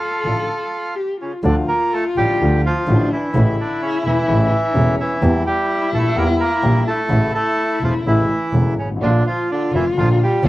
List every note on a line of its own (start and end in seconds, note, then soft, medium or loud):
0.00 0.94 F4 medium
0.00 0.97 A4 medium
0.00 0.95 F5 medium
0.24 0.45 A1 soft
0.24 0.45 A1 medium
0.24 0.45 A2 soft
0.24 0.45 D3 soft
0.24 0.45 F3 soft
0.24 0.45 A3 soft
0.24 0.45 D4 soft
0.24 0.45 F4 soft
0.96 1.20 G4 medium
1.21 1.33 C#3 soft
1.21 1.32 C#4 medium
1.21 1.43 F4 medium
1.43 1.64 D2 loud
1.43 1.65 D2 medium
1.43 1.65 D3 medium
1.43 1.56 D3 medium
1.43 1.65 F3 medium
1.43 1.65 A3 medium
1.43 1.55 D4 medium
1.43 1.65 F4 medium
1.43 2.84 F4 loud
1.68 1.91 A#3 medium
1.68 1.93 A#4 medium
1.93 2.05 A3 medium
1.93 2.04 A4 medium
2.17 2.37 A1 medium
2.17 2.37 A2 medium
2.17 2.37 D3 soft
2.17 2.37 F3 soft
2.17 2.61 G3 medium
2.17 2.37 A3 soft
2.17 2.37 F4 medium
2.17 2.61 G4 medium
2.40 2.60 D2 loud
2.40 2.61 D2 medium
2.40 2.61 D3 medium
2.40 2.61 F3 medium
2.40 2.61 A3 medium
2.40 2.61 F4 medium
2.66 3.09 F3 medium
2.66 3.09 F4 medium
2.87 3.08 A1 medium
2.87 3.08 A2 medium
2.87 3.08 D3 medium
2.87 3.08 F3 medium
2.87 3.08 A3 medium
2.87 3.32 D4 medium
2.87 3.08 F4 medium
3.12 3.56 E3 medium
3.12 3.56 E4 medium
3.34 3.55 A1 loud
3.34 3.55 A1 medium
3.34 3.55 A2 medium
3.34 3.55 C#3 medium
3.34 3.55 E3 medium
3.34 3.55 A3 medium
3.34 4.75 E4 loud
3.34 3.55 E4 medium
3.60 3.82 D3 medium
3.60 3.81 D4 medium
3.82 4.04 C#3 medium
3.82 4.04 C#4 medium
4.05 4.25 E1 medium
4.05 4.25 E2 medium
4.05 4.25 C#3 medium
4.05 4.25 E3 soft
4.05 4.96 E3 medium
4.05 4.25 A3 soft
4.05 4.95 E4 loud
4.05 4.25 E4 medium
4.28 4.48 A1 loud
4.28 4.48 A1 medium
4.28 4.48 A2 medium
4.28 4.48 C#3 medium
4.28 4.48 E3 medium
4.28 4.48 A3 medium
4.28 4.49 E4 medium
4.74 4.95 E1 medium
4.74 4.95 E2 medium
4.74 4.95 C#3 medium
4.74 4.95 E3 medium
4.74 4.95 A3 medium
4.74 5.21 C#4 medium
4.74 4.96 E4 medium
5.00 5.44 E3 medium
5.00 5.43 E4 medium
5.21 5.42 E2 medium
5.21 5.42 E2 loud
5.21 5.42 E3 medium
5.21 5.42 G3 medium
5.21 5.42 A#3 medium
5.21 7.06 E4 loud
5.21 5.42 G4 medium
5.46 5.91 G3 medium
5.46 5.90 G4 loud
5.92 6.12 A#1 medium
5.92 6.13 A#1 medium
5.92 6.12 A#2 medium
5.92 6.12 E3 soft
5.92 6.13 G3 soft
5.92 6.16 A3 medium
5.92 6.13 A#3 soft
5.92 6.13 G4 medium
5.92 6.18 A4 medium
6.16 6.36 E2 medium
6.16 6.36 E2 loud
6.16 6.36 E3 medium
6.16 6.36 G3 medium
6.16 6.36 A#3 medium
6.16 6.28 A#3 medium
6.16 6.36 G4 medium
6.16 6.28 A#4 loud
6.40 6.84 A#3 medium
6.40 6.84 A#4 loud
6.63 6.83 A#1 medium
6.63 6.83 A#2 medium
6.63 6.83 E3 medium
6.63 6.83 G3 medium
6.63 6.83 A#3 medium
6.63 6.83 G4 medium
6.87 7.32 A3 medium
6.87 7.33 A4 medium
7.08 7.30 A1 loud
7.08 7.30 A1 medium
7.08 7.30 A2 medium
7.08 7.30 C#3 medium
7.08 7.30 E3 medium
7.08 7.30 A3 medium
7.08 8.72 E4 medium
7.08 7.30 E4 medium
7.35 7.79 A3 medium
7.35 7.83 A4 loud
7.81 8.01 E1 medium
7.81 8.02 E1 medium
7.81 8.02 E2 medium
7.81 8.02 C#3 soft
7.81 8.02 E3 soft
7.81 7.94 F3 medium
7.81 8.02 A3 soft
7.81 8.02 E4 medium
7.81 7.94 F4 medium
8.05 8.25 A1 loud
8.05 8.26 A1 medium
8.05 8.26 A2 medium
8.05 8.26 C#3 medium
8.05 8.26 E3 medium
8.05 8.74 E3 medium
8.05 8.26 A3 medium
8.05 8.26 E4 medium
8.05 8.74 E4 loud
8.53 8.73 E1 medium
8.53 8.74 E1 medium
8.53 8.74 E2 medium
8.53 8.74 C#3 medium
8.53 8.74 E3 medium
8.53 8.74 A3 medium
8.53 8.74 E4 medium
8.77 9.00 G#1 medium
8.77 8.89 C#3 medium
8.77 8.89 C#4 medium
8.85 8.90 G1 medium
8.90 8.96 G#1 medium
8.96 9.02 A1 medium
8.96 10.48 F4 medium
9.01 9.21 A#1 loud
9.01 9.22 A#1 medium
9.01 9.22 A#2 medium
9.01 9.22 D3 medium
9.01 9.25 D3 medium
9.01 9.22 F3 medium
9.01 9.22 A#3 medium
9.01 9.22 D4 medium
9.01 9.24 D4 loud
9.01 9.22 F4 medium
9.27 9.49 F3 medium
9.27 9.51 F4 medium
9.51 9.73 D3 medium
9.51 9.72 D4 medium
9.72 9.93 F1 medium
9.72 9.93 F2 medium
9.72 9.93 D3 soft
9.72 9.85 E3 medium
9.72 9.93 F3 soft
9.72 9.93 A#3 medium
9.72 9.93 A#3 soft
9.72 9.93 D4 soft
9.72 9.85 E4 medium
9.72 9.93 F4 medium
9.96 10.17 A#1 loud
9.96 10.17 A#1 medium
9.96 10.17 A#2 medium
9.96 10.17 D3 medium
9.96 10.17 F3 medium
9.96 10.09 F3 medium
9.96 10.16 A#3 medium
9.96 10.17 A#3 medium
9.96 10.16 D4 medium
9.96 10.16 F4 medium
9.96 10.17 F4 medium
9.96 10.08 F4 medium
10.23 10.44 G3 medium
10.23 10.44 G4 medium
10.43 10.48 F1 loud
10.43 10.48 F1 medium
10.43 10.48 F2 medium
10.43 10.48 D3 medium
10.43 10.48 F3 medium
10.43 10.48 A#3 medium
10.43 10.48 D4 medium
10.43 10.48 F4 medium